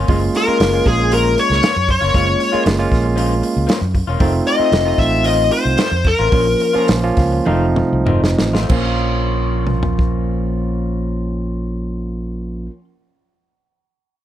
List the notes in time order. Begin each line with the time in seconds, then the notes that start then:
0.08 F#1 F3 G#3 A#3 C#4 F4, kick, open hi-hat
0.22 muted clean electric guitar stroke
0.33 A#4, muted clean electric guitar stroke, open hi-hat
0.47 G#3 A#3 C#4 F4, muted fingered electric bass stroke
0.60 F#1, muted clean electric guitar stroke, snare, open hi-hat
0.73 G#3 A#3 C#4 F4, muted clean electric guitar stroke
0.86 A#1 G#4, kick, open hi-hat
0.98 muted clean electric guitar stroke
1.11 F3 A#3 C#4 F4 A#4, open hi-hat
1.37 C#5, muted clean electric guitar stroke, open hi-hat
1.50 C#2, snare
1.62 F3 A#3 C#4 F4, snare, open hi-hat
1.76 F#2, muted clean electric guitar stroke
1.88 C#5, muted clean electric guitar stroke, kick, open hi-hat
2.01 F#1 A#3 C#4 F4
2.14 F#1 F3 G#3 A#3 C#4 F4, kick, open hi-hat
2.27 muted clean electric guitar stroke
2.39 muted clean electric guitar stroke, open hi-hat
2.52 G#3 A#3 C#4 F4, muted fingered electric bass stroke
2.65 F#1, muted clean electric guitar stroke, snare, open hi-hat
2.78 G#3 A#3 C#4 F4, muted clean electric guitar stroke
2.92 A#1, kick, snare, open hi-hat
3.04 muted clean electric guitar stroke
3.16 F3 A#3 C#4 F4, open hi-hat
3.42 muted clean electric guitar stroke, open hi-hat
3.56 C#2
3.67 F3 A#3 C#4 F4, snare, open hi-hat
3.81 F#2, muted clean electric guitar stroke
3.94 muted clean electric guitar stroke, kick, open hi-hat
4.07 E1 A#3 C#4 F4
4.19 F1 D#3 A3 C4 D#4 F4, kick, open hi-hat
4.33 muted clean electric guitar stroke
4.46 D#5, muted clean electric guitar stroke, open hi-hat
4.58 A3 C4 D#4 F4, muted fingered electric bass stroke
4.72 F1, muted clean electric guitar stroke, snare, open hi-hat
4.85 A3 C4 D#4 F4, muted clean electric guitar stroke
4.98 A1 E5, kick, snare, open hi-hat
5.11 muted clean electric guitar stroke
5.24 D#3 A3 C4 F4 D#5, open hi-hat
5.51 C5, muted clean electric guitar stroke, open hi-hat
5.65 C2
5.77 D#3 A3 C4 F4, snare, open hi-hat
5.92 F2, muted clean electric guitar stroke
6.04 A#4, muted clean electric guitar stroke, kick, open hi-hat
6.19 A1 A3 C4 F4
6.32 A#1 F3 A#3 C#4 F4, kick, open hi-hat
6.47 muted clean electric guitar stroke
6.60 muted clean electric guitar stroke, open hi-hat
6.73 F3 A#3 C#4 F4, muted fingered electric bass stroke
6.88 A#1, muted clean electric guitar stroke, snare, open hi-hat
7.02 F3 A#3 C#4 F4, muted clean electric guitar stroke
7.17 C#2 F5, kick, snare, open hi-hat
7.32 muted clean electric guitar stroke
7.46 F1 D#3 F3 A3 C4 D#4 F4 F5, high tom
7.76 muted clean electric guitar stroke, mid tom
7.93 C2
8.06 F1 D#3 A3 C4 F4 D#5, mid tom
8.23 muted clean electric guitar stroke, snare
8.38 A1, muted clean electric guitar stroke, snare
8.53 A3 C4 F4, snare
8.64 F3
8.68 A#1 F3 A#3 C#4, kick, crash
8.72 F4
8.77 C#4
8.82 F4
9.67 mid tom
9.83 floor tom
9.99 kick